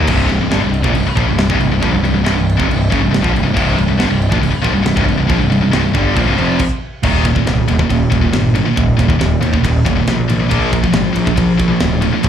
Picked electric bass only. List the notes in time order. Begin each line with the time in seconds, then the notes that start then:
0.09 C1
0.30 C1
0.42 C1
0.53 G1
0.64 C1
0.84 A#1
0.95 C1
1.08 muted picked electric bass stroke
1.17 A#1
1.30 C1
1.39 C1
1.50 C1
1.60 C1
1.72 C1
1.83 A#1
1.94 C1
2.04 C1
2.15 C1
2.27 C1
2.38 C1
2.60 F1
2.71 C1
2.92 F#1
3.03 C1
3.12 C1
3.24 A#1
3.36 C1
3.45 C1
3.57 C1
3.78 C1
3.88 C1
3.99 G1
4.09 C1
4.32 A#1
4.42 C1
4.55 muted picked electric bass stroke
4.64 A#1
4.75 C1
4.87 C1
4.96 C1
5.08 C1
5.18 C1
5.30 A#1
5.42 C1
5.52 C1
5.63 C1
5.74 C1
5.84 C1
5.94 G1
6.16 A#1
6.27 C1
6.39 F1
7.03 D#1
7.47 C1
7.67 D#1
7.90 D#1
8.11 D#1
8.33 G1
8.77 D#1
8.99 D#1
9.19 D#1
9.40 D#2
9.65 D#1
9.85 D#1
10.08 A#1
10.30 A#1
10.51 A#1
10.94 G#1
11.16 A#1
11.38 A#1
11.60 A#1
11.80 D1
12.24 A#1